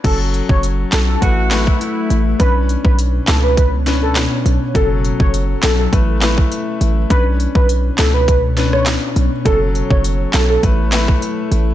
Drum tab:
CC |x---------------|----------------|----------------|----------------|
HH |x-x-x-x-x-x-x-x-|x-x-x-x-x-x-x-x-|x-x-x-x-x-x-x-x-|x-x-x-x-x-x-x-x-|
CP |------x---x-----|------x-----x---|------x---x-----|------x-----x---|
SD |------o---o-----|------o---o-o---|------o---o-----|------o---oro---|
BD |o--o----o--o----|o--o----o-------|o--o----o--o----|o--o----o-------|

CC |----------------|
HH |x-x-x-x-x-x-x-x-|
CP |------x---x-----|
SD |------o---o-----|
BD |o--o----o--o----|